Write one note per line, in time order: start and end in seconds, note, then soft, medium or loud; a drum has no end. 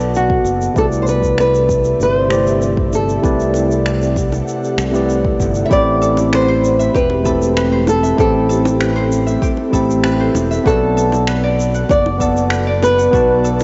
0.00 0.39 B1 medium
0.00 0.72 B3 medium
0.00 0.77 B3 medium
0.00 0.72 F#4 medium
0.00 0.12 A4 loud
0.00 0.72 A4 medium
0.00 0.77 B4 medium
0.00 0.72 D5 medium
0.00 0.78 D5 medium
0.00 0.78 F#5 medium
0.00 0.78 A5 medium
0.00 shaker soft
0.15 0.79 F#4 medium
0.15 shaker medium
0.30 kick loud
0.44 0.68 F#1 medium
0.44 shaker medium
0.62 shaker soft
0.74 1.93 C2 medium
0.74 2.26 C3 medium
0.74 2.26 A3 medium
0.74 5.67 C4 medium
0.74 2.27 E4 medium
0.74 2.27 G4 medium
0.74 5.67 G4 medium
0.74 5.67 A4 medium
0.74 2.28 B4 medium
0.74 5.68 D5 medium
0.74 3.21 E5 medium
0.74 kick loud
0.74 shaker soft
0.78 0.84 A4 medium
0.78 2.28 D5 loud
0.92 shaker soft
1.02 1.08 C5 medium
1.07 1.39 B4 medium
1.07 shaker medium
1.23 kick soft
1.23 shaker soft
1.38 2.02 B4 medium
1.38 finger snap medium
1.38 shaker medium
1.55 shaker soft
1.69 kick medium
1.69 shaker medium
1.84 shaker soft
2.00 3.17 G1 medium
2.00 2.90 C5 medium
2.00 shaker medium
2.29 3.19 C3 medium
2.29 3.19 A3 medium
2.29 3.20 E4 medium
2.29 3.20 G4 medium
2.29 3.20 C5 medium
2.29 3.21 D5 medium
2.29 finger snap medium
2.29 high bongo medium
2.29 shaker medium
2.47 shaker soft
2.62 shaker medium
2.77 kick loud
2.93 5.06 A4 medium
2.93 high bongo medium
2.93 shaker medium
3.09 shaker soft
3.21 4.41 C2 loud
3.21 4.73 C3 medium
3.21 4.74 A3 medium
3.21 4.74 E4 medium
3.21 4.75 G4 medium
3.21 4.75 B4 medium
3.21 4.75 D5 loud
3.21 5.69 F#5 medium
3.21 kick loud
3.21 shaker medium
3.40 shaker soft
3.54 high bongo medium
3.54 shaker medium
3.71 shaker soft
3.86 finger snap medium
3.86 shaker medium
4.02 shaker soft
4.16 kick loud
4.16 shaker medium
4.32 high bongo medium
4.32 shaker soft
4.48 shaker medium
4.64 shaker soft
4.78 5.33 C2 medium
4.78 finger snap medium
4.78 shaker medium
4.92 5.66 C3 medium
4.92 5.67 A3 medium
4.92 5.67 E4 medium
4.92 5.68 G4 medium
4.92 5.68 B4 medium
4.92 shaker soft
4.96 5.68 D5 medium
5.10 shaker medium
5.25 kick loud
5.40 5.63 G1 medium
5.40 kick medium
5.40 shaker medium
5.55 shaker medium
5.66 7.21 A3 medium
5.66 5.72 E5 medium
5.70 6.88 A1 loud
5.70 10.62 A3 medium
5.70 10.62 C4 medium
5.70 7.23 C4 loud
5.70 7.21 E4 medium
5.70 7.22 G4 medium
5.70 6.94 G4 medium
5.70 10.62 G4 medium
5.70 6.34 D5 loud
5.70 8.16 B5 medium
5.70 7.22 B5 medium
5.70 kick loud
5.70 shaker medium
6.02 7.25 A4 medium
6.02 shaker medium
6.17 high bongo medium
6.17 shaker medium
6.33 6.54 B4 medium
6.33 6.95 C5 loud
6.33 finger snap medium
6.33 shaker soft
6.48 7.62 C5 loud
6.65 shaker medium
6.79 8.03 E5 medium
6.79 shaker medium
6.94 8.12 E1 medium
6.94 8.18 G4 medium
6.94 7.84 B4 medium
6.94 kick loud
6.94 shaker soft
7.10 high bongo medium
7.23 8.14 A3 medium
7.23 8.14 E4 medium
7.23 8.15 G4 medium
7.23 8.49 A4 medium
7.23 8.15 B5 medium
7.23 kick medium
7.23 shaker medium
7.28 8.16 C4 medium
7.42 shaker medium
7.56 7.78 B4 medium
7.56 finger snap loud
7.56 shaker soft
7.72 8.86 C5 medium
7.87 8.19 A4 medium
7.87 high bongo medium
7.87 shaker medium
8.03 9.26 E5 medium
8.03 shaker medium
8.16 9.36 A1 loud
8.16 9.68 A3 medium
8.16 9.70 C4 loud
8.16 9.69 E4 medium
8.16 9.69 G4 medium
8.16 9.42 G4 medium
8.16 13.10 A4 medium
8.16 9.39 A4 medium
8.16 9.70 B5 medium
8.16 kick loud
8.16 shaker soft
8.49 9.73 A4 loud
8.49 shaker medium
8.65 high bongo loud
8.65 shaker medium
8.80 9.02 B4 medium
8.80 finger snap loud
8.80 shaker soft
8.96 10.10 C5 loud
9.12 shaker medium
9.27 10.50 E5 medium
9.27 shaker medium
9.42 10.72 G4 medium
9.42 kick loud
9.42 shaker medium
9.57 high bongo medium
9.71 10.28 A1 medium
9.71 10.61 A3 medium
9.71 10.63 C4 medium
9.71 10.62 E4 medium
9.71 10.62 G4 medium
9.71 10.97 A4 loud
9.71 10.63 B5 medium
9.71 kick medium
9.71 shaker medium
9.90 shaker medium
10.04 10.26 B4 medium
10.04 finger snap loud
10.04 shaker medium
10.20 11.34 C5 loud
10.35 10.58 E1 medium
10.35 high bongo medium
10.35 shaker medium
10.51 12.23 E5 medium
10.51 shaker medium
10.64 11.83 B1 loud
10.64 12.16 B3 medium
10.64 13.64 B3 medium
10.64 13.64 F#4 medium
10.64 11.89 F#4 medium
10.64 11.90 A4 medium
10.64 12.16 B4 medium
10.64 13.64 D5 medium
10.64 12.17 D5 medium
10.64 12.17 F#5 medium
10.64 12.18 A5 loud
10.64 kick loud
10.64 shaker soft
10.97 12.20 A4 loud
10.97 shaker medium
11.12 high bongo medium
11.12 shaker medium
11.27 12.51 B4 medium
11.27 finger snap loud
11.27 shaker soft
11.44 12.67 D5 medium
11.60 shaker medium
11.74 12.97 F#5 medium
11.74 shaker medium
11.89 13.07 F#1 medium
11.89 13.13 F#4 medium
11.89 12.48 D5 loud
11.89 kick loud
11.89 shaker medium
12.06 high bongo medium
12.18 13.09 B3 medium
12.18 13.44 A4 loud
12.18 13.09 B4 medium
12.18 13.10 D5 medium
12.18 13.10 F#5 medium
12.18 kick medium
12.18 shaker medium
12.22 13.11 A5 medium
12.37 shaker medium
12.50 13.64 B4 medium
12.50 finger snap loud
12.50 shaker medium
12.67 13.64 D5 loud
12.83 13.64 B4 loud
12.83 high bongo loud
12.83 shaker medium
12.98 13.64 F#5 medium
12.98 shaker medium
13.11 13.64 B1 loud
13.11 13.64 B3 medium
13.11 13.64 F#4 medium
13.11 13.64 B4 medium
13.11 13.64 D5 medium
13.11 13.64 F#5 medium
13.11 13.64 B5 medium
13.11 kick loud
13.11 shaker medium
13.15 13.64 A5 loud
13.44 13.64 A4 loud
13.44 shaker medium
13.60 high bongo loud
13.60 shaker medium